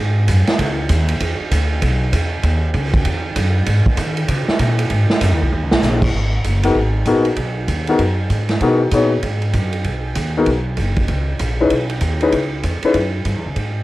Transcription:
Already playing: upright bass G#2
0.28 upright bass F#2, kick, hi-hat pedal, ride
0.47 muted upright bass stroke, snare, ride
0.58 upright bass C#2, kick, ride
0.89 upright bass D#2, kick, hi-hat pedal, ride
1.09 ride
1.20 upright bass E2, kick, ride
1.40 muted upright bass stroke
1.51 upright bass D2, kick, hi-hat pedal, ride
1.82 upright bass B1, kick, ride
2.13 upright bass E2, kick, hi-hat pedal, ride
2.43 upright bass D#2, kick, ride
2.74 upright bass C#2, kick, hi-hat pedal, ride
2.93 kick, ride
3.05 upright bass E2, kick, ride
3.36 upright bass F#2, kick, hi-hat pedal, ride
3.66 upright bass G#2, kick, ride
3.86 kick
3.97 upright bass D#3, kick, hi-hat pedal, ride
4.17 ride
4.28 upright bass C#3, kick, ride
4.48 muted upright bass stroke, snare
4.59 upright bass A#2, kick, hi-hat pedal, ride
4.78 ride
4.90 upright bass G#2, kick, ride
5.10 muted upright bass stroke, snare
5.21 upright bass F#2, kick, hi-hat pedal, ride
5.31 upright bass D#2
5.41 upright bass B1
5.52 upright bass D#2
5.62 upright bass C#2
5.71 upright bass A#1, snare
5.82 upright bass A#1, snare, hi-hat pedal
6.02 kick, crash
6.13 upright bass G#1, kick
6.44 upright bass F#1, kick, hi-hat pedal, ride
6.63 grand piano B3 D#4 F#4 G#4 A#4, ride
6.75 upright bass G#1, kick
7.06 upright bass A#1, grand piano B3 D#4 F#4 G#4 A#4, kick, hi-hat pedal, ride
7.25 ride
7.37 upright bass B1, kick, ride
7.68 upright bass D#2, kick, hi-hat pedal, ride
7.87 grand piano B3 D#4 F#4 G#4 A#4, ride
7.99 upright bass F#2, kick, ride
8.30 upright bass G#2, kick, hi-hat pedal, ride
8.49 snare, ride
8.61 upright bass B2, grand piano B3 D#4 F#4 G#4 A#4, kick, ride
8.91 upright bass A#2, grand piano B3 D#4 F#4 G#4 C#5, kick, hi-hat pedal, ride
9.23 upright bass G#2, kick, ride
9.42 ride
9.53 upright bass F#2, kick, hi-hat pedal, ride
9.73 ride
9.84 upright bass B1, kick, ride
10.15 upright bass D#2, kick, hi-hat pedal, ride
10.37 grand piano B3 D#4 F#4 G#4 A#4
10.46 upright bass B1, kick, ride
10.77 upright bass F#1, kick, hi-hat pedal, ride
10.96 kick, ride
11.08 upright bass C#2, kick, ride
11.39 upright bass A#1, kick, hi-hat pedal, ride
11.60 grand piano C#4 D#4 E4 G#4 B4
11.70 upright bass B1, kick, ride
11.89 ride
12.01 upright bass D#2, kick, hi-hat pedal, ride
12.20 grand piano C#4 D#4 E4 G#4 B4, ride
12.32 upright bass C#2, kick, ride
12.63 upright bass E2, kick, hi-hat pedal, ride
12.82 grand piano C#4 D#4 E4 G#4 B4, muted upright bass stroke, ride
12.94 upright bass F#2, kick, ride
13.25 upright bass G2, kick, hi-hat pedal, ride
13.36 upright bass E2
13.46 upright bass C#2
13.56 upright bass G#2, kick, ride

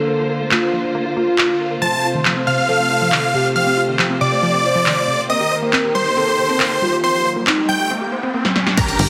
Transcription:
Already playing: string section D3 A#3 F4 C5, soft synth lead A4
0.08 synth pluck A#3
0.19 synth pluck F4
0.30 synth pluck A#4
0.41 synth pluck A3
0.51 synth pluck A#3, soft synth lead F4, clap
0.62 synth pluck F4
0.73 synth pluck F3
0.84 synth pluck F4
0.95 synth pluck A#3
1.06 synth pluck F4
1.17 synth pluck A#3, soft synth lead F4
1.27 synth pluck A#3
1.38 synth pluck F4, clap
1.49 synth pluck F4
1.60 synth pluck A#4
1.71 synth pluck A#4
1.82 string section C3 A3 C5, synth pluck F3, soft synth lead C5, supersaw synth A5 A6
1.93 synth pluck C4
2.04 synth pluck F4
2.14 synth pluck D#3
2.25 synth pluck F3, clap
2.36 synth pluck C4
2.47 synth pluck C3, supersaw synth F5 F6
2.58 synth pluck C4
2.69 synth pluck F3, soft synth lead A4
2.80 synth pluck C4
2.91 synth pluck F4
3.01 synth pluck F3
3.12 synth pluck D#3, clap
3.23 synth pluck F4
3.34 synth pluck C3, soft synth lead G4
3.45 synth pluck C4
3.56 synth pluck F3, supersaw synth F5 F6
3.67 synth pluck C4
3.77 synth pluck F4
3.88 synth pluck D#3
3.99 synth pluck F3, soft synth lead G4, clap
4.10 synth pluck C4
4.21 synth pluck C3, supersaw synth D5 D6
4.32 synth pluck C4
4.43 synth pluck F3
4.54 synth pluck C4
4.64 synth pluck F4, soft synth lead C5
4.75 synth pluck F3
4.86 synth pluck D#3, clap
4.97 synth pluck F4
5.08 synth pluck C3
5.19 synth pluck C4
5.30 string section D#3 A#3 G4, synth pluck C4, soft synth lead A#4, supersaw synth D#5 D#6, riser
5.40 synth pluck G4
5.51 synth pluck C5
5.62 synth pluck A#3
5.73 synth pluck C4, clap
5.84 synth pluck G4
5.95 synth pluck G3, supersaw synth C5 C6
6.06 synth pluck G4
6.17 synth pluck C4, soft synth lead A4
6.28 synth pluck G4
6.38 synth pluck C5
6.49 synth pluck C4
6.60 synth pluck A#3, clap
6.71 synth pluck C5
6.82 synth pluck G3, soft synth lead F4
6.93 synth pluck G4
7.04 synth pluck C4, supersaw synth C5 C6
7.14 synth pluck G4
7.25 synth pluck C5
7.36 synth pluck A#3
7.47 synth pluck C4, soft synth lead D#4, clap
7.58 synth pluck G4
7.69 synth pluck G3, supersaw synth G5 G6
7.80 synth pluck G4
7.91 synth pluck C4
8.01 synth pluck G4
8.12 synth pluck C5
8.23 synth pluck C4
8.34 synth pluck A#3
8.45 synth pluck C5, snare
8.56 synth pluck G3, snare
8.67 synth pluck G4, snare
8.77 string section D3 G3 A#3 G4, synth pluck G3, supersaw synth G4 A#4 A#5, kick, closed hi-hat, tambourine, crash, impact
8.88 synth pluck D4, closed hi-hat, tambourine
8.99 analog synth bass G1, synth pluck G4, open hi-hat

